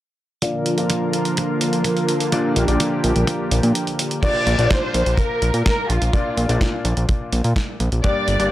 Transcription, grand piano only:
0, 0, Header, 1, 2, 480
1, 0, Start_track
1, 0, Tempo, 476190
1, 422, Time_signature, 4, 2, 24, 8
1, 8585, End_track
2, 0, Start_track
2, 0, Title_t, "Grand piano"
2, 0, Program_c, 0, 0
2, 424, Note_on_c, 0, 46, 86
2, 424, Note_on_c, 0, 58, 77
2, 424, Note_on_c, 0, 62, 79
2, 424, Note_on_c, 0, 74, 95
2, 425, Note_on_c, 0, 65, 83
2, 754, Note_off_c, 0, 74, 0
2, 755, Note_off_c, 0, 46, 0
2, 755, Note_off_c, 0, 58, 0
2, 755, Note_off_c, 0, 62, 0
2, 755, Note_off_c, 0, 65, 0
2, 783, Note_on_c, 0, 46, 76
2, 783, Note_on_c, 0, 58, 72
2, 783, Note_on_c, 0, 62, 73
2, 783, Note_on_c, 0, 65, 74
2, 783, Note_on_c, 0, 74, 87
2, 2314, Note_off_c, 0, 46, 0
2, 2314, Note_off_c, 0, 58, 0
2, 2314, Note_off_c, 0, 62, 0
2, 2314, Note_off_c, 0, 65, 0
2, 2314, Note_off_c, 0, 74, 0
2, 2344, Note_on_c, 0, 46, 91
2, 2344, Note_on_c, 0, 58, 80
2, 2344, Note_on_c, 0, 62, 83
2, 2344, Note_on_c, 0, 74, 102
2, 2345, Note_on_c, 0, 65, 81
2, 2675, Note_off_c, 0, 46, 0
2, 2675, Note_off_c, 0, 58, 0
2, 2675, Note_off_c, 0, 62, 0
2, 2675, Note_off_c, 0, 65, 0
2, 2675, Note_off_c, 0, 74, 0
2, 2704, Note_on_c, 0, 46, 84
2, 2704, Note_on_c, 0, 65, 74
2, 2704, Note_on_c, 0, 74, 86
2, 2705, Note_on_c, 0, 58, 72
2, 2705, Note_on_c, 0, 62, 75
2, 4235, Note_off_c, 0, 46, 0
2, 4235, Note_off_c, 0, 58, 0
2, 4235, Note_off_c, 0, 62, 0
2, 4235, Note_off_c, 0, 65, 0
2, 4235, Note_off_c, 0, 74, 0
2, 4263, Note_on_c, 0, 46, 92
2, 4263, Note_on_c, 0, 58, 84
2, 4263, Note_on_c, 0, 62, 84
2, 4263, Note_on_c, 0, 65, 87
2, 4263, Note_on_c, 0, 74, 104
2, 4594, Note_off_c, 0, 46, 0
2, 4594, Note_off_c, 0, 58, 0
2, 4594, Note_off_c, 0, 62, 0
2, 4594, Note_off_c, 0, 65, 0
2, 4594, Note_off_c, 0, 74, 0
2, 4622, Note_on_c, 0, 46, 83
2, 4622, Note_on_c, 0, 62, 77
2, 4623, Note_on_c, 0, 58, 74
2, 4623, Note_on_c, 0, 65, 75
2, 4623, Note_on_c, 0, 74, 89
2, 6154, Note_off_c, 0, 46, 0
2, 6154, Note_off_c, 0, 58, 0
2, 6154, Note_off_c, 0, 62, 0
2, 6154, Note_off_c, 0, 65, 0
2, 6154, Note_off_c, 0, 74, 0
2, 6181, Note_on_c, 0, 58, 85
2, 6182, Note_on_c, 0, 46, 91
2, 6182, Note_on_c, 0, 62, 86
2, 6182, Note_on_c, 0, 65, 86
2, 6182, Note_on_c, 0, 74, 102
2, 6513, Note_off_c, 0, 46, 0
2, 6513, Note_off_c, 0, 58, 0
2, 6513, Note_off_c, 0, 65, 0
2, 6514, Note_off_c, 0, 62, 0
2, 6514, Note_off_c, 0, 74, 0
2, 6542, Note_on_c, 0, 46, 84
2, 6542, Note_on_c, 0, 58, 77
2, 6542, Note_on_c, 0, 62, 75
2, 6542, Note_on_c, 0, 65, 76
2, 6543, Note_on_c, 0, 74, 94
2, 8074, Note_off_c, 0, 46, 0
2, 8074, Note_off_c, 0, 58, 0
2, 8074, Note_off_c, 0, 62, 0
2, 8074, Note_off_c, 0, 65, 0
2, 8074, Note_off_c, 0, 74, 0
2, 8103, Note_on_c, 0, 43, 94
2, 8103, Note_on_c, 0, 58, 86
2, 8103, Note_on_c, 0, 62, 85
2, 8103, Note_on_c, 0, 67, 88
2, 8103, Note_on_c, 0, 74, 104
2, 8434, Note_off_c, 0, 43, 0
2, 8434, Note_off_c, 0, 58, 0
2, 8434, Note_off_c, 0, 62, 0
2, 8434, Note_off_c, 0, 67, 0
2, 8434, Note_off_c, 0, 74, 0
2, 8462, Note_on_c, 0, 43, 83
2, 8462, Note_on_c, 0, 58, 76
2, 8462, Note_on_c, 0, 62, 75
2, 8462, Note_on_c, 0, 67, 78
2, 8462, Note_on_c, 0, 74, 93
2, 8585, Note_off_c, 0, 43, 0
2, 8585, Note_off_c, 0, 58, 0
2, 8585, Note_off_c, 0, 62, 0
2, 8585, Note_off_c, 0, 67, 0
2, 8585, Note_off_c, 0, 74, 0
2, 8585, End_track
0, 0, End_of_file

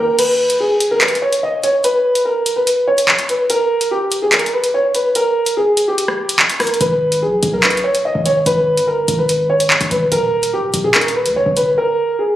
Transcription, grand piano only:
0, 0, Header, 1, 2, 480
1, 0, Start_track
1, 0, Key_signature, 5, "minor"
1, 0, Tempo, 413793
1, 216, Time_signature, 4, 2, 24, 8
1, 14336, End_track
2, 0, Start_track
2, 0, Title_t, "Grand piano"
2, 0, Program_c, 0, 0
2, 0, Note_on_c, 0, 70, 81
2, 184, Note_off_c, 0, 70, 0
2, 217, Note_on_c, 0, 71, 96
2, 668, Note_off_c, 0, 71, 0
2, 698, Note_on_c, 0, 68, 77
2, 1036, Note_off_c, 0, 68, 0
2, 1059, Note_on_c, 0, 70, 77
2, 1163, Note_off_c, 0, 70, 0
2, 1174, Note_on_c, 0, 71, 84
2, 1385, Note_off_c, 0, 71, 0
2, 1415, Note_on_c, 0, 73, 83
2, 1625, Note_off_c, 0, 73, 0
2, 1660, Note_on_c, 0, 75, 73
2, 1868, Note_off_c, 0, 75, 0
2, 1897, Note_on_c, 0, 73, 83
2, 2107, Note_off_c, 0, 73, 0
2, 2138, Note_on_c, 0, 71, 108
2, 2588, Note_off_c, 0, 71, 0
2, 2612, Note_on_c, 0, 70, 79
2, 2953, Note_off_c, 0, 70, 0
2, 2971, Note_on_c, 0, 71, 70
2, 3312, Note_off_c, 0, 71, 0
2, 3335, Note_on_c, 0, 73, 85
2, 3787, Note_off_c, 0, 73, 0
2, 3823, Note_on_c, 0, 71, 76
2, 4030, Note_off_c, 0, 71, 0
2, 4060, Note_on_c, 0, 70, 104
2, 4510, Note_off_c, 0, 70, 0
2, 4538, Note_on_c, 0, 67, 83
2, 4876, Note_off_c, 0, 67, 0
2, 4896, Note_on_c, 0, 68, 80
2, 5001, Note_off_c, 0, 68, 0
2, 5023, Note_on_c, 0, 70, 82
2, 5230, Note_off_c, 0, 70, 0
2, 5259, Note_on_c, 0, 71, 80
2, 5468, Note_off_c, 0, 71, 0
2, 5501, Note_on_c, 0, 73, 79
2, 5709, Note_off_c, 0, 73, 0
2, 5740, Note_on_c, 0, 71, 81
2, 5948, Note_off_c, 0, 71, 0
2, 5982, Note_on_c, 0, 70, 97
2, 6431, Note_off_c, 0, 70, 0
2, 6461, Note_on_c, 0, 68, 79
2, 6797, Note_off_c, 0, 68, 0
2, 6819, Note_on_c, 0, 67, 76
2, 7611, Note_off_c, 0, 67, 0
2, 7652, Note_on_c, 0, 70, 77
2, 7864, Note_off_c, 0, 70, 0
2, 7896, Note_on_c, 0, 71, 95
2, 8347, Note_off_c, 0, 71, 0
2, 8378, Note_on_c, 0, 68, 80
2, 8716, Note_off_c, 0, 68, 0
2, 8739, Note_on_c, 0, 70, 73
2, 8843, Note_off_c, 0, 70, 0
2, 8854, Note_on_c, 0, 71, 84
2, 9065, Note_off_c, 0, 71, 0
2, 9094, Note_on_c, 0, 73, 80
2, 9305, Note_off_c, 0, 73, 0
2, 9339, Note_on_c, 0, 75, 71
2, 9548, Note_off_c, 0, 75, 0
2, 9578, Note_on_c, 0, 73, 84
2, 9788, Note_off_c, 0, 73, 0
2, 9818, Note_on_c, 0, 71, 107
2, 10268, Note_off_c, 0, 71, 0
2, 10294, Note_on_c, 0, 70, 80
2, 10633, Note_off_c, 0, 70, 0
2, 10652, Note_on_c, 0, 71, 72
2, 10992, Note_off_c, 0, 71, 0
2, 11016, Note_on_c, 0, 73, 82
2, 11467, Note_off_c, 0, 73, 0
2, 11504, Note_on_c, 0, 71, 78
2, 11711, Note_off_c, 0, 71, 0
2, 11740, Note_on_c, 0, 70, 108
2, 12189, Note_off_c, 0, 70, 0
2, 12220, Note_on_c, 0, 67, 80
2, 12557, Note_off_c, 0, 67, 0
2, 12576, Note_on_c, 0, 68, 80
2, 12681, Note_off_c, 0, 68, 0
2, 12703, Note_on_c, 0, 70, 84
2, 12910, Note_off_c, 0, 70, 0
2, 12939, Note_on_c, 0, 71, 80
2, 13148, Note_off_c, 0, 71, 0
2, 13181, Note_on_c, 0, 73, 78
2, 13389, Note_off_c, 0, 73, 0
2, 13418, Note_on_c, 0, 71, 82
2, 13627, Note_off_c, 0, 71, 0
2, 13662, Note_on_c, 0, 70, 99
2, 14111, Note_off_c, 0, 70, 0
2, 14138, Note_on_c, 0, 68, 78
2, 14336, Note_off_c, 0, 68, 0
2, 14336, End_track
0, 0, End_of_file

